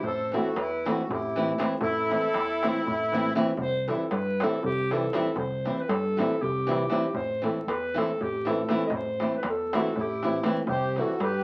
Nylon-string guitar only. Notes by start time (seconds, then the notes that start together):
0.32 E3 A3 C4 E4
0.85 E3 A3 C4 E4
1.36 E3 A3 C4 E4
1.58 E3 A3 C4 E4
2.10 E3 A3 C4 E4
2.63 E3 A3 C4 E4
3.12 E3 A3 C4 E4
3.35 E3 A3 C4 E4
3.87 E3 G3 C4 E4
4.42 E3 G3 C4 E4
4.91 E3 G3 C4 E4
5.13 E3 G3 C4 E4
5.65 E3 G3 C4 E4
6.17 E3 G3 C4 E4
6.67 E3 G3 C4 E4
6.89 E3 G3 C4 E4
7.42 E3 A3 C4 E4
7.94 E3 A3 C4 E4
8.45 E3 A3 C4 E4
8.69 E3 A3 C4 E4
9.20 E3 A3 C4 E4
9.73 E3 A3 C4 E4
10.23 E3 A3 C4 E4
10.44 E3 A3 C4 E4
10.97 E3 G3 C4 E4